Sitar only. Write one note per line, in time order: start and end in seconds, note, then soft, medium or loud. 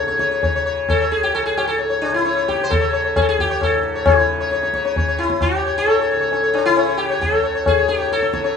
0.00 0.14 A4 medium
0.08 0.19 C#5 soft
0.20 0.30 C#5 soft
0.31 0.42 C#5 soft
0.43 0.55 C#5 soft
0.56 0.65 C#5 soft
0.66 0.87 C#5 soft
0.90 1.11 A4 loud
1.01 1.22 C#5 soft
1.12 1.23 G#4 loud
1.23 1.34 G4 loud
1.35 1.41 A4 loud
1.42 1.57 G#4 medium
1.42 1.45 A4 medium
1.57 1.67 G4 medium
1.68 1.78 A4 medium
1.79 1.89 C#5 soft
1.90 2.12 C#5 soft
2.02 2.14 D4 medium
2.14 2.49 E4 medium
2.25 2.36 C#5 soft
2.37 2.58 C#5 soft
2.48 2.66 G4 medium
2.64 2.70 C5 medium
2.70 3.16 A4 loud
2.81 2.92 C#5 soft
2.93 3.03 C#5 soft
3.04 3.26 C#5 soft
3.16 3.21 G#4 loud
3.22 3.28 A4 medium
3.29 3.40 G#4 loud
3.40 3.61 G4 loud
3.50 3.71 C#5 soft
3.63 4.09 A4 loud
3.95 4.17 C#5 soft
4.07 4.71 E4 medium
4.19 4.39 C#5 soft
4.40 4.51 C#5 soft
4.52 4.62 C#5 soft
4.63 4.73 C#5 soft
4.75 4.84 C#5 soft
4.85 4.96 C#5 soft
4.98 5.07 C#5 soft
5.08 5.29 C#5 soft
5.19 5.43 E4 medium
5.42 5.77 G4 loud
5.56 5.65 C#5 soft
5.67 5.87 C#5 soft
5.78 6.40 A4 loud
5.88 6.00 C#5 soft
6.01 6.10 C#5 soft
6.11 6.20 C#5 soft
6.21 6.32 C#5 soft
6.33 6.42 C#5 soft
6.43 6.64 C#5 soft
6.54 6.65 D4 medium
6.66 7.00 E4 loud
6.77 6.87 C#5 soft
6.88 7.09 C#5 soft
6.97 7.21 G4 medium
7.10 7.31 C#5 soft
7.21 7.67 A4 medium
7.33 7.42 C#5 soft
7.43 7.54 C#5 soft
7.55 7.76 C#5 soft
7.67 7.88 G#4 loud
7.78 7.97 C#5 soft
7.88 8.12 G4 medium
7.98 8.20 C#5 soft
8.12 8.57 A4 loud
8.22 8.32 C#5 soft
8.33 8.43 C#5 soft
8.44 8.57 C#5 soft